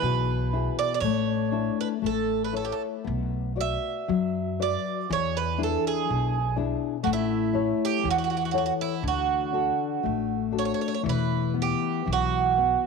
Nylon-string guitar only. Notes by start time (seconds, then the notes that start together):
Already playing: B3 E4 G#4
0.02 B2
0.53 B3 E4 G#4
1.04 A3
1.52 D4 E4 A4
2.02 A3
2.53 E4 A4 C#5
3.04 B3
3.56 F#4 B4 D5
4.08 F#3
4.59 F#4 B4 D5
5.10 E3
5.58 D4 E4 G#4
6.09 B2
6.56 D4 E4 G#4
7.03 A3
7.53 E4 A4 C#5
8.03 E3
8.53 E4 A4 C#5
9.02 D3
9.53 D4 F#4 A4
10.03 A3
10.52 D4 F#4 A4
11.03 E3
11.54 B3
12.06 E3
12.58 B3